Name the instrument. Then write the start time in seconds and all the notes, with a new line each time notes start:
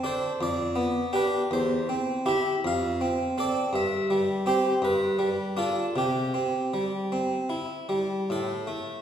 harpsichord
0.04 D4 A4 C5
0.41 F2 D5
0.76 B3
1.13 D4 G4 B4
1.51 E2 C5
1.89 C4
2.26 E4 G4 E5
2.65 F2 F5
3.01 C4
3.38 C4 A4 D5
3.73 G2 E5
4.10 G3
4.46 C4 G4 C5
4.82 G2 B4
5.19 G3
5.57 D4 F4 A4
5.96 C3 G4
6.34 C4
6.74 G3
7.12 C4
7.50 E4
7.89 G3
8.30 A2 A4
8.67 A3